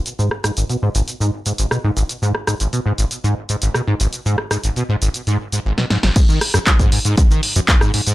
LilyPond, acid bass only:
\new Staff \with { instrumentName = "Acid bass" } { \clef bass \time 4/4 \key gis \minor \tempo 4 = 118 r16 gis,16 r16 gis,16 gis,,16 b,16 gis,16 gis,,16 r16 gis,16 r16 gis,16 gis,,16 b,16 gis,16 gis,,16 | r16 gis,16 r16 gis,16 gis,,16 b,16 gis,16 gis,,16 r16 gis,16 r16 gis,16 gis,,16 b,16 gis,16 gis,,16 | r16 gis,16 r16 gis,16 gis,,16 b,16 gis,16 gis,,16 r16 gis,16 r16 gis,16 gis,,16 b,16 gis,16 gis,,16 | gis,16 dis16 r16 fis,16 r16 gis,16 gis,16 gis,16 r16 dis16 r16 fis,16 r16 gis,16 gis,16 gis,16 | }